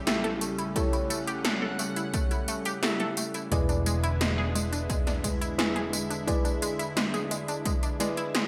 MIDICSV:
0, 0, Header, 1, 6, 480
1, 0, Start_track
1, 0, Tempo, 689655
1, 527, Time_signature, 4, 2, 24, 8
1, 5900, End_track
2, 0, Start_track
2, 0, Title_t, "FM electric piano"
2, 0, Program_c, 0, 5
2, 47, Note_on_c, 0, 64, 98
2, 47, Note_on_c, 0, 67, 90
2, 47, Note_on_c, 0, 69, 90
2, 47, Note_on_c, 0, 76, 107
2, 498, Note_off_c, 0, 64, 0
2, 498, Note_off_c, 0, 67, 0
2, 498, Note_off_c, 0, 69, 0
2, 498, Note_off_c, 0, 76, 0
2, 528, Note_on_c, 0, 67, 87
2, 528, Note_on_c, 0, 69, 90
2, 528, Note_on_c, 0, 73, 106
2, 529, Note_on_c, 0, 64, 94
2, 1939, Note_off_c, 0, 64, 0
2, 1939, Note_off_c, 0, 67, 0
2, 1939, Note_off_c, 0, 69, 0
2, 1939, Note_off_c, 0, 73, 0
2, 1968, Note_on_c, 0, 64, 98
2, 1968, Note_on_c, 0, 67, 91
2, 1968, Note_on_c, 0, 69, 90
2, 1968, Note_on_c, 0, 76, 113
2, 2418, Note_off_c, 0, 76, 0
2, 2419, Note_off_c, 0, 64, 0
2, 2419, Note_off_c, 0, 67, 0
2, 2419, Note_off_c, 0, 69, 0
2, 2447, Note_on_c, 0, 64, 97
2, 2447, Note_on_c, 0, 71, 88
2, 2447, Note_on_c, 0, 74, 108
2, 2448, Note_on_c, 0, 68, 91
2, 3858, Note_off_c, 0, 64, 0
2, 3858, Note_off_c, 0, 68, 0
2, 3858, Note_off_c, 0, 71, 0
2, 3858, Note_off_c, 0, 74, 0
2, 3886, Note_on_c, 0, 76, 109
2, 3887, Note_on_c, 0, 64, 102
2, 3887, Note_on_c, 0, 68, 90
2, 3887, Note_on_c, 0, 71, 91
2, 4338, Note_off_c, 0, 64, 0
2, 4338, Note_off_c, 0, 68, 0
2, 4338, Note_off_c, 0, 71, 0
2, 4338, Note_off_c, 0, 76, 0
2, 4366, Note_on_c, 0, 64, 99
2, 4366, Note_on_c, 0, 68, 88
2, 4366, Note_on_c, 0, 71, 90
2, 4367, Note_on_c, 0, 74, 109
2, 5543, Note_off_c, 0, 64, 0
2, 5543, Note_off_c, 0, 68, 0
2, 5543, Note_off_c, 0, 71, 0
2, 5543, Note_off_c, 0, 74, 0
2, 5567, Note_on_c, 0, 64, 94
2, 5567, Note_on_c, 0, 68, 85
2, 5567, Note_on_c, 0, 71, 87
2, 5567, Note_on_c, 0, 74, 104
2, 5898, Note_off_c, 0, 64, 0
2, 5898, Note_off_c, 0, 68, 0
2, 5898, Note_off_c, 0, 71, 0
2, 5898, Note_off_c, 0, 74, 0
2, 5900, End_track
3, 0, Start_track
3, 0, Title_t, "Analog synth pad"
3, 0, Program_c, 1, 89
3, 0, Note_on_c, 1, 49, 84
3, 0, Note_on_c, 1, 55, 76
3, 0, Note_on_c, 1, 57, 77
3, 0, Note_on_c, 1, 64, 94
3, 508, Note_off_c, 1, 64, 0
3, 526, Note_on_c, 1, 78, 92
3, 2419, Note_off_c, 1, 49, 0
3, 2419, Note_off_c, 1, 55, 0
3, 2419, Note_off_c, 1, 57, 0
3, 2427, Note_off_c, 1, 78, 0
3, 2446, Note_on_c, 1, 50, 84
3, 2447, Note_on_c, 1, 56, 76
3, 2447, Note_on_c, 1, 59, 79
3, 2447, Note_on_c, 1, 64, 95
3, 4348, Note_off_c, 1, 59, 0
3, 5900, Note_off_c, 1, 50, 0
3, 5900, Note_off_c, 1, 56, 0
3, 5900, Note_off_c, 1, 64, 0
3, 5900, End_track
4, 0, Start_track
4, 0, Title_t, "Synth arpeggio sound"
4, 0, Program_c, 2, 84
4, 49, Note_on_c, 2, 57, 107
4, 129, Note_off_c, 2, 57, 0
4, 167, Note_on_c, 2, 69, 103
4, 216, Note_off_c, 2, 69, 0
4, 287, Note_on_c, 2, 57, 77
4, 368, Note_off_c, 2, 57, 0
4, 407, Note_on_c, 2, 64, 79
4, 456, Note_off_c, 2, 64, 0
4, 527, Note_on_c, 2, 57, 104
4, 576, Note_off_c, 2, 57, 0
4, 647, Note_on_c, 2, 64, 77
4, 729, Note_off_c, 2, 64, 0
4, 766, Note_on_c, 2, 57, 103
4, 881, Note_off_c, 2, 57, 0
4, 887, Note_on_c, 2, 67, 105
4, 936, Note_off_c, 2, 67, 0
4, 1007, Note_on_c, 2, 57, 103
4, 1089, Note_off_c, 2, 57, 0
4, 1127, Note_on_c, 2, 69, 101
4, 1176, Note_off_c, 2, 69, 0
4, 1247, Note_on_c, 2, 57, 79
4, 1329, Note_off_c, 2, 57, 0
4, 1368, Note_on_c, 2, 64, 79
4, 1417, Note_off_c, 2, 64, 0
4, 1488, Note_on_c, 2, 57, 102
4, 1537, Note_off_c, 2, 57, 0
4, 1609, Note_on_c, 2, 64, 79
4, 1689, Note_off_c, 2, 64, 0
4, 1729, Note_on_c, 2, 57, 100
4, 1842, Note_off_c, 2, 57, 0
4, 1849, Note_on_c, 2, 67, 107
4, 1897, Note_off_c, 2, 67, 0
4, 1968, Note_on_c, 2, 57, 101
4, 2049, Note_off_c, 2, 57, 0
4, 2088, Note_on_c, 2, 69, 104
4, 2137, Note_off_c, 2, 69, 0
4, 2209, Note_on_c, 2, 57, 78
4, 2290, Note_off_c, 2, 57, 0
4, 2329, Note_on_c, 2, 64, 77
4, 2377, Note_off_c, 2, 64, 0
4, 2449, Note_on_c, 2, 56, 101
4, 2497, Note_off_c, 2, 56, 0
4, 2569, Note_on_c, 2, 62, 77
4, 2649, Note_off_c, 2, 62, 0
4, 2689, Note_on_c, 2, 56, 105
4, 2802, Note_off_c, 2, 56, 0
4, 2808, Note_on_c, 2, 64, 107
4, 2857, Note_off_c, 2, 64, 0
4, 2928, Note_on_c, 2, 56, 105
4, 3009, Note_off_c, 2, 56, 0
4, 3049, Note_on_c, 2, 68, 104
4, 3097, Note_off_c, 2, 68, 0
4, 3168, Note_on_c, 2, 56, 78
4, 3249, Note_off_c, 2, 56, 0
4, 3288, Note_on_c, 2, 62, 82
4, 3336, Note_off_c, 2, 62, 0
4, 3408, Note_on_c, 2, 56, 103
4, 3456, Note_off_c, 2, 56, 0
4, 3527, Note_on_c, 2, 62, 79
4, 3609, Note_off_c, 2, 62, 0
4, 3647, Note_on_c, 2, 56, 103
4, 3761, Note_off_c, 2, 56, 0
4, 3768, Note_on_c, 2, 64, 103
4, 3816, Note_off_c, 2, 64, 0
4, 3887, Note_on_c, 2, 56, 106
4, 3968, Note_off_c, 2, 56, 0
4, 4008, Note_on_c, 2, 68, 107
4, 4056, Note_off_c, 2, 68, 0
4, 4128, Note_on_c, 2, 56, 78
4, 4209, Note_off_c, 2, 56, 0
4, 4249, Note_on_c, 2, 62, 79
4, 4297, Note_off_c, 2, 62, 0
4, 4367, Note_on_c, 2, 56, 105
4, 4416, Note_off_c, 2, 56, 0
4, 4487, Note_on_c, 2, 62, 80
4, 4569, Note_off_c, 2, 62, 0
4, 4608, Note_on_c, 2, 56, 107
4, 4722, Note_off_c, 2, 56, 0
4, 4728, Note_on_c, 2, 64, 105
4, 4776, Note_off_c, 2, 64, 0
4, 4848, Note_on_c, 2, 56, 105
4, 4929, Note_off_c, 2, 56, 0
4, 4968, Note_on_c, 2, 68, 102
4, 5016, Note_off_c, 2, 68, 0
4, 5088, Note_on_c, 2, 56, 79
4, 5169, Note_off_c, 2, 56, 0
4, 5209, Note_on_c, 2, 62, 77
4, 5257, Note_off_c, 2, 62, 0
4, 5329, Note_on_c, 2, 56, 100
4, 5377, Note_off_c, 2, 56, 0
4, 5449, Note_on_c, 2, 62, 77
4, 5529, Note_off_c, 2, 62, 0
4, 5569, Note_on_c, 2, 56, 103
4, 5682, Note_off_c, 2, 56, 0
4, 5689, Note_on_c, 2, 64, 105
4, 5737, Note_off_c, 2, 64, 0
4, 5808, Note_on_c, 2, 56, 103
4, 5889, Note_off_c, 2, 56, 0
4, 5900, End_track
5, 0, Start_track
5, 0, Title_t, "Picked electric bass"
5, 0, Program_c, 3, 34
5, 0, Note_on_c, 3, 33, 89
5, 2423, Note_off_c, 3, 33, 0
5, 2448, Note_on_c, 3, 28, 89
5, 5900, Note_off_c, 3, 28, 0
5, 5900, End_track
6, 0, Start_track
6, 0, Title_t, "Drums"
6, 48, Note_on_c, 9, 38, 123
6, 48, Note_on_c, 9, 42, 77
6, 48, Note_on_c, 9, 54, 40
6, 118, Note_off_c, 9, 38, 0
6, 118, Note_off_c, 9, 42, 0
6, 118, Note_off_c, 9, 54, 0
6, 169, Note_on_c, 9, 42, 35
6, 238, Note_off_c, 9, 42, 0
6, 288, Note_on_c, 9, 42, 76
6, 288, Note_on_c, 9, 54, 67
6, 357, Note_off_c, 9, 42, 0
6, 357, Note_off_c, 9, 54, 0
6, 407, Note_on_c, 9, 42, 51
6, 407, Note_on_c, 9, 54, 28
6, 477, Note_off_c, 9, 42, 0
6, 477, Note_off_c, 9, 54, 0
6, 527, Note_on_c, 9, 36, 117
6, 528, Note_on_c, 9, 42, 77
6, 528, Note_on_c, 9, 54, 40
6, 597, Note_off_c, 9, 36, 0
6, 598, Note_off_c, 9, 42, 0
6, 598, Note_off_c, 9, 54, 0
6, 648, Note_on_c, 9, 42, 35
6, 648, Note_on_c, 9, 54, 28
6, 718, Note_off_c, 9, 42, 0
6, 718, Note_off_c, 9, 54, 0
6, 768, Note_on_c, 9, 42, 77
6, 768, Note_on_c, 9, 54, 69
6, 838, Note_off_c, 9, 42, 0
6, 838, Note_off_c, 9, 54, 0
6, 887, Note_on_c, 9, 42, 52
6, 887, Note_on_c, 9, 54, 30
6, 957, Note_off_c, 9, 42, 0
6, 957, Note_off_c, 9, 54, 0
6, 1007, Note_on_c, 9, 38, 113
6, 1007, Note_on_c, 9, 42, 75
6, 1007, Note_on_c, 9, 54, 40
6, 1076, Note_off_c, 9, 38, 0
6, 1076, Note_off_c, 9, 42, 0
6, 1076, Note_off_c, 9, 54, 0
6, 1246, Note_on_c, 9, 42, 74
6, 1246, Note_on_c, 9, 54, 67
6, 1316, Note_off_c, 9, 42, 0
6, 1316, Note_off_c, 9, 54, 0
6, 1367, Note_on_c, 9, 42, 50
6, 1367, Note_on_c, 9, 54, 30
6, 1436, Note_off_c, 9, 42, 0
6, 1436, Note_off_c, 9, 54, 0
6, 1487, Note_on_c, 9, 36, 120
6, 1487, Note_on_c, 9, 42, 76
6, 1487, Note_on_c, 9, 54, 38
6, 1556, Note_off_c, 9, 42, 0
6, 1556, Note_off_c, 9, 54, 0
6, 1557, Note_off_c, 9, 36, 0
6, 1607, Note_on_c, 9, 42, 36
6, 1607, Note_on_c, 9, 54, 27
6, 1677, Note_off_c, 9, 42, 0
6, 1677, Note_off_c, 9, 54, 0
6, 1726, Note_on_c, 9, 42, 77
6, 1726, Note_on_c, 9, 54, 69
6, 1795, Note_off_c, 9, 42, 0
6, 1795, Note_off_c, 9, 54, 0
6, 1847, Note_on_c, 9, 42, 51
6, 1847, Note_on_c, 9, 54, 29
6, 1917, Note_off_c, 9, 42, 0
6, 1917, Note_off_c, 9, 54, 0
6, 1967, Note_on_c, 9, 38, 118
6, 1967, Note_on_c, 9, 42, 76
6, 1967, Note_on_c, 9, 54, 40
6, 2037, Note_off_c, 9, 38, 0
6, 2037, Note_off_c, 9, 42, 0
6, 2037, Note_off_c, 9, 54, 0
6, 2086, Note_on_c, 9, 42, 34
6, 2156, Note_off_c, 9, 42, 0
6, 2206, Note_on_c, 9, 42, 78
6, 2206, Note_on_c, 9, 54, 72
6, 2276, Note_off_c, 9, 42, 0
6, 2276, Note_off_c, 9, 54, 0
6, 2327, Note_on_c, 9, 42, 51
6, 2327, Note_on_c, 9, 54, 29
6, 2396, Note_off_c, 9, 42, 0
6, 2396, Note_off_c, 9, 54, 0
6, 2447, Note_on_c, 9, 36, 118
6, 2447, Note_on_c, 9, 42, 77
6, 2447, Note_on_c, 9, 54, 41
6, 2517, Note_off_c, 9, 36, 0
6, 2517, Note_off_c, 9, 42, 0
6, 2517, Note_off_c, 9, 54, 0
6, 2568, Note_on_c, 9, 42, 37
6, 2568, Note_on_c, 9, 54, 30
6, 2637, Note_off_c, 9, 42, 0
6, 2637, Note_off_c, 9, 54, 0
6, 2688, Note_on_c, 9, 42, 81
6, 2688, Note_on_c, 9, 54, 73
6, 2758, Note_off_c, 9, 42, 0
6, 2758, Note_off_c, 9, 54, 0
6, 2809, Note_on_c, 9, 42, 53
6, 2809, Note_on_c, 9, 54, 32
6, 2878, Note_off_c, 9, 42, 0
6, 2878, Note_off_c, 9, 54, 0
6, 2929, Note_on_c, 9, 38, 113
6, 2929, Note_on_c, 9, 42, 75
6, 2929, Note_on_c, 9, 54, 41
6, 2999, Note_off_c, 9, 38, 0
6, 2999, Note_off_c, 9, 42, 0
6, 2999, Note_off_c, 9, 54, 0
6, 3170, Note_on_c, 9, 42, 75
6, 3170, Note_on_c, 9, 54, 72
6, 3240, Note_off_c, 9, 42, 0
6, 3240, Note_off_c, 9, 54, 0
6, 3289, Note_on_c, 9, 42, 52
6, 3289, Note_on_c, 9, 54, 31
6, 3359, Note_off_c, 9, 42, 0
6, 3359, Note_off_c, 9, 54, 0
6, 3408, Note_on_c, 9, 36, 116
6, 3408, Note_on_c, 9, 42, 78
6, 3408, Note_on_c, 9, 54, 41
6, 3477, Note_off_c, 9, 36, 0
6, 3478, Note_off_c, 9, 42, 0
6, 3478, Note_off_c, 9, 54, 0
6, 3528, Note_on_c, 9, 38, 35
6, 3528, Note_on_c, 9, 42, 36
6, 3528, Note_on_c, 9, 54, 28
6, 3598, Note_off_c, 9, 38, 0
6, 3598, Note_off_c, 9, 42, 0
6, 3598, Note_off_c, 9, 54, 0
6, 3648, Note_on_c, 9, 36, 59
6, 3649, Note_on_c, 9, 42, 79
6, 3649, Note_on_c, 9, 54, 73
6, 3718, Note_off_c, 9, 36, 0
6, 3718, Note_off_c, 9, 42, 0
6, 3718, Note_off_c, 9, 54, 0
6, 3769, Note_on_c, 9, 42, 51
6, 3769, Note_on_c, 9, 54, 31
6, 3839, Note_off_c, 9, 42, 0
6, 3839, Note_off_c, 9, 54, 0
6, 3889, Note_on_c, 9, 38, 115
6, 3889, Note_on_c, 9, 42, 80
6, 3889, Note_on_c, 9, 54, 43
6, 3959, Note_off_c, 9, 38, 0
6, 3959, Note_off_c, 9, 42, 0
6, 3959, Note_off_c, 9, 54, 0
6, 4008, Note_on_c, 9, 42, 36
6, 4078, Note_off_c, 9, 42, 0
6, 4129, Note_on_c, 9, 42, 79
6, 4129, Note_on_c, 9, 54, 74
6, 4199, Note_off_c, 9, 42, 0
6, 4199, Note_off_c, 9, 54, 0
6, 4249, Note_on_c, 9, 42, 53
6, 4249, Note_on_c, 9, 54, 31
6, 4319, Note_off_c, 9, 42, 0
6, 4319, Note_off_c, 9, 54, 0
6, 4368, Note_on_c, 9, 36, 121
6, 4370, Note_on_c, 9, 42, 81
6, 4370, Note_on_c, 9, 54, 43
6, 4437, Note_off_c, 9, 36, 0
6, 4439, Note_off_c, 9, 42, 0
6, 4439, Note_off_c, 9, 54, 0
6, 4489, Note_on_c, 9, 42, 38
6, 4489, Note_on_c, 9, 54, 30
6, 4559, Note_off_c, 9, 42, 0
6, 4559, Note_off_c, 9, 54, 0
6, 4609, Note_on_c, 9, 42, 83
6, 4609, Note_on_c, 9, 54, 73
6, 4678, Note_off_c, 9, 42, 0
6, 4678, Note_off_c, 9, 54, 0
6, 4729, Note_on_c, 9, 42, 54
6, 4729, Note_on_c, 9, 54, 31
6, 4798, Note_off_c, 9, 42, 0
6, 4798, Note_off_c, 9, 54, 0
6, 4849, Note_on_c, 9, 38, 116
6, 4849, Note_on_c, 9, 42, 81
6, 4849, Note_on_c, 9, 54, 42
6, 4919, Note_off_c, 9, 38, 0
6, 4919, Note_off_c, 9, 42, 0
6, 4919, Note_off_c, 9, 54, 0
6, 4968, Note_on_c, 9, 42, 39
6, 4968, Note_on_c, 9, 54, 30
6, 5038, Note_off_c, 9, 42, 0
6, 5038, Note_off_c, 9, 54, 0
6, 5088, Note_on_c, 9, 42, 78
6, 5088, Note_on_c, 9, 54, 70
6, 5158, Note_off_c, 9, 42, 0
6, 5158, Note_off_c, 9, 54, 0
6, 5209, Note_on_c, 9, 42, 55
6, 5209, Note_on_c, 9, 54, 31
6, 5278, Note_off_c, 9, 42, 0
6, 5278, Note_off_c, 9, 54, 0
6, 5328, Note_on_c, 9, 36, 113
6, 5328, Note_on_c, 9, 42, 82
6, 5328, Note_on_c, 9, 54, 43
6, 5397, Note_off_c, 9, 36, 0
6, 5397, Note_off_c, 9, 42, 0
6, 5397, Note_off_c, 9, 54, 0
6, 5448, Note_on_c, 9, 42, 39
6, 5448, Note_on_c, 9, 54, 29
6, 5518, Note_off_c, 9, 42, 0
6, 5518, Note_off_c, 9, 54, 0
6, 5569, Note_on_c, 9, 38, 36
6, 5569, Note_on_c, 9, 42, 81
6, 5569, Note_on_c, 9, 54, 73
6, 5638, Note_off_c, 9, 38, 0
6, 5638, Note_off_c, 9, 42, 0
6, 5638, Note_off_c, 9, 54, 0
6, 5688, Note_on_c, 9, 42, 53
6, 5688, Note_on_c, 9, 54, 32
6, 5758, Note_off_c, 9, 42, 0
6, 5758, Note_off_c, 9, 54, 0
6, 5809, Note_on_c, 9, 38, 120
6, 5809, Note_on_c, 9, 42, 79
6, 5809, Note_on_c, 9, 54, 43
6, 5878, Note_off_c, 9, 38, 0
6, 5878, Note_off_c, 9, 42, 0
6, 5878, Note_off_c, 9, 54, 0
6, 5900, End_track
0, 0, End_of_file